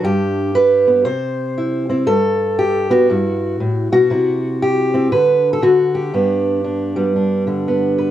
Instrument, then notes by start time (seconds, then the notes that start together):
steel-string acoustic guitar
Already playing: D4
0.04 G2 G4
0.55 B4
0.87 B3
1.05 C3 C5
1.57 E4
1.89 C4 E4
2.06 G2 A4
2.59 G4
2.90 B3 F#4
3.10 G2 E4
3.60 A2
3.92 B2 F#4
4.10 C3 E4
4.62 G4
4.94 C4 E4
5.12 D3 B4
5.53 A4
5.62 D3 F#4
5.95 G4
6.14 G2 B3 D4
6.65 D4
6.96 G3 B3
7.16 D4
7.47 D3 D4
7.68 B3
7.98 B4